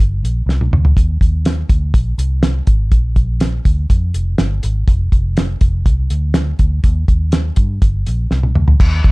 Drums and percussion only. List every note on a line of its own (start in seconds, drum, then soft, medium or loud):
0.00 closed hi-hat medium
0.25 closed hi-hat medium
0.49 snare soft
0.61 high tom medium
0.73 mid tom medium
0.85 floor tom medium
0.97 kick medium
0.97 closed hi-hat medium
1.21 kick medium
1.21 closed hi-hat soft
1.45 snare loud
1.45 closed hi-hat medium
1.69 kick medium
1.69 closed hi-hat medium
1.94 kick loud
1.94 closed hi-hat medium
2.19 closed hi-hat medium
2.43 snare loud
2.43 closed hi-hat medium
2.67 kick medium
2.67 closed hi-hat medium
2.92 kick loud
2.92 closed hi-hat medium
3.16 kick medium
3.16 closed hi-hat medium
3.40 snare loud
3.40 closed hi-hat medium
3.65 kick medium
3.65 closed hi-hat medium
3.90 kick loud
3.90 closed hi-hat medium
4.14 closed hi-hat medium
4.38 snare loud
4.38 closed hi-hat medium
4.63 closed hi-hat medium
4.88 kick loud
4.88 closed hi-hat medium
5.12 kick medium
5.12 closed hi-hat soft
5.37 snare loud
5.37 closed hi-hat medium
5.61 kick medium
5.61 closed hi-hat medium
5.86 kick loud
5.86 closed hi-hat medium
6.10 closed hi-hat medium
6.34 snare loud
6.34 closed hi-hat medium
6.59 kick medium
6.59 closed hi-hat medium
6.84 kick medium
6.84 closed hi-hat medium
7.08 kick medium
7.08 closed hi-hat soft
7.32 snare loud
7.32 closed hi-hat medium
7.56 kick medium
7.56 closed hi-hat medium
7.82 kick loud
7.82 closed hi-hat medium
8.06 closed hi-hat medium
8.31 snare soft
8.43 high tom medium
8.55 mid tom medium
8.68 floor tom medium
8.80 kick loud
8.80 crash medium
9.04 kick medium
9.04 ride soft